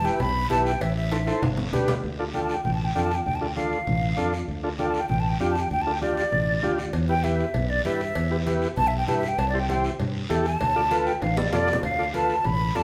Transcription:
0.04 transistor combo organ E4 G4 B4, flute G5, short guiro
0.20 fingered electric bass B1, flute B5, cowbell, high conga, low conga, long guiro
0.50 fingered electric bass B1, transistor combo organ E4 G4 B4, flute A5, cowbell, high conga, low timbale, short guiro
0.66 flute G5, short guiro
0.81 fingered electric bass A1, flute E5, cowbell, high conga, long guiro
0.96 flute E5
1.11 transistor combo organ E4 A4 C5, cowbell, high timbale, short guiro
1.27 transistor combo organ E4 A4 C5, high timbale, short guiro
1.42 fingered electric bass G1, cowbell, low conga, high timbale, long guiro
1.57 low conga
1.73 fingered electric bass D2, transistor combo organ D4 G4 B4, cowbell, low conga, short guiro
1.88 low conga, low timbale, short guiro
2.03 fingered electric bass D2, high conga, long guiro
2.19 transistor combo organ D4 F4 A4
2.34 transistor combo organ D4 F4 A4, flute G5, high conga, short guiro
2.44 flute A5
2.49 short guiro
2.54 flute G5
2.64 fingered electric bass A1, flute G5, high conga, low conga, long guiro
2.74 flute A5
2.85 flute G5
2.94 fingered electric bass F2, transistor combo organ D4 F4 A4, flute G5, high conga, short guiro
3.04 flute A5
3.11 flute G5, short guiro
3.25 fingered electric bass D2, flute G5, high conga, low conga, long guiro
3.35 flute A5
3.41 transistor combo organ D4 F4 A4
3.46 flute G5
3.56 transistor combo organ D4 F4 A4, flute F5, high conga, short guiro
3.72 short guiro
3.87 fingered electric bass A1, high conga, low conga, long guiro
4.17 fingered electric bass F2, transistor combo organ D4 F4 A4, high conga, short guiro
4.33 short guiro
4.48 fingered electric bass D2, high conga, long guiro
4.63 transistor combo organ D4 F4 A4
4.79 transistor combo organ D4 F4 A4, flute G5, high conga, short guiro
4.89 flute A5
4.94 short guiro
4.99 flute G5
5.09 fingered electric bass A1, flute G5, high conga, low conga, long guiro
5.20 flute A5
5.30 flute G5
5.40 fingered electric bass F2, transistor combo organ D4 F4 G4, flute G5, high conga, short guiro
5.51 flute A5
5.55 short guiro
5.60 flute G5
5.71 fingered electric bass D2, flute G5, high conga, long guiro
5.82 flute A5
5.87 transistor combo organ D4 F4 A4
5.92 flute G5
6.02 transistor combo organ D4 F4 G4, flute D5, high conga, short guiro
6.17 short guiro
6.32 fingered electric bass A1, high conga, low conga, long guiro
6.63 fingered electric bass D2, transistor combo organ D4 F4 G4, high conga, short guiro
6.78 short guiro
6.93 fingered electric bass E2, cowbell, long guiro
7.09 transistor combo organ E4 G4 B4, flute G5
7.24 transistor combo organ E4 G4 B4, flute E5, cowbell, high conga, short guiro
7.39 short guiro
7.54 fingered electric bass B1, cowbell, high conga, low conga, long guiro
7.70 flute D5
7.85 fingered electric bass G2, transistor combo organ E4 G4 B4, flute E5, cowbell, high conga, low timbale, short guiro
8.00 short guiro
8.15 fingered electric bass E2, cowbell, high conga, long guiro
8.31 transistor combo organ E4 G4 B4
8.46 transistor combo organ E4 G4 B4, cowbell, high conga, short guiro
8.62 short guiro
8.77 fingered electric bass B1, flute A5, cowbell, high conga, low conga, long guiro
8.88 flute E5
8.98 flute G5
9.08 fingered electric bass G2, transistor combo organ E4 G4 B4, flute A5, cowbell, high conga, low conga, short guiro
9.18 flute E5
9.23 short guiro
9.28 flute G5
9.38 fingered electric bass C2, flute A5, cowbell, high conga, long guiro
9.49 flute D5
9.54 transistor combo organ E4 G4 C5
9.59 flute G5
9.69 transistor combo organ E4 G4 C5, flute G5, cowbell, high conga, short guiro
9.84 short guiro
10.00 fingered electric bass G2, cowbell, high conga, low conga, long guiro
10.29 fingered electric bass E2, transistor combo organ E4 G4 A4, cowbell, high conga, low timbale, short guiro
10.45 flute A5, short guiro
10.61 fingered electric bass D2, cowbell, high conga, low conga, long guiro
10.76 transistor combo organ F4 A4 D5
10.91 transistor combo organ F4 A4 B4, cowbell, high conga, short guiro
11.06 flute G5, short guiro
11.22 fingered electric bass A1, flute F5, cowbell, high conga, high timbale, long guiro
11.37 flute D5, low timbale
11.42 high conga
11.52 fingered electric bass F2, transistor combo organ F4 A4 D5, flute D5, cowbell, low conga, low timbale, short guiro
11.68 low timbale, short guiro
11.73 low conga
11.83 fingered electric bass D2, flute F5, cowbell, high conga, long guiro
11.98 transistor combo organ F4 A4 D5
12.14 transistor combo organ F4 A4 B4, flute A5, cowbell, high conga, short guiro
12.29 short guiro
12.44 fingered electric bass A1, flute B5, cowbell, high conga, low conga, long guiro
12.75 fingered electric bass F2, transistor combo organ F4 A4 D5, flute A5, cowbell, high conga, low timbale, short guiro

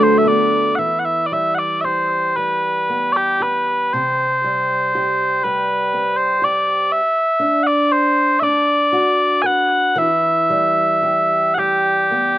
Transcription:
Already playing: steel-string acoustic guitar D2 D3 A3 B3 F#4, brass ensemble F#3 D4 B4, cello B3
0.03 bagpipes C5
0.18 bagpipes E5
0.25 steel-string acoustic guitar B3, bagpipes D5
0.75 steel-string acoustic guitar E3, bagpipes E5 F#5
0.99 bagpipes F#5
1.05 bagpipes E5
1.26 bagpipes D5
1.32 steel-string acoustic guitar G3, bagpipes E5
1.55 bagpipes D5 F#5
1.81 steel-string acoustic guitar G4, bagpipes C5 E5
2.36 steel-string acoustic guitar G3, bagpipes B4
2.89 steel-string acoustic guitar B3
3.13 bagpipes G4 D5
3.40 steel-string acoustic guitar G4, bagpipes B4
3.93 steel-string acoustic guitar C3, bagpipes C5
4.44 steel-string acoustic guitar G3
4.95 steel-string acoustic guitar G4
5.44 steel-string acoustic guitar G3, bagpipes B4
5.93 steel-string acoustic guitar C4
6.17 bagpipes C5
6.42 steel-string acoustic guitar G4, bagpipes D5
6.92 bagpipes E5
7.40 steel-string acoustic guitar D4
7.63 bagpipes D5 F#5
7.92 bagpipes C5
8.40 steel-string acoustic guitar D4, bagpipes D5 E5
8.93 steel-string acoustic guitar F#4
9.42 steel-string acoustic guitar B4, bagpipes G#5
9.46 bagpipes F#5
9.96 steel-string acoustic guitar E3, bagpipes E5
10.50 steel-string acoustic guitar G3
11.03 steel-string acoustic guitar G4
11.54 steel-string acoustic guitar G3, bagpipes F#5
11.59 bagpipes G4
12.11 steel-string acoustic guitar B3

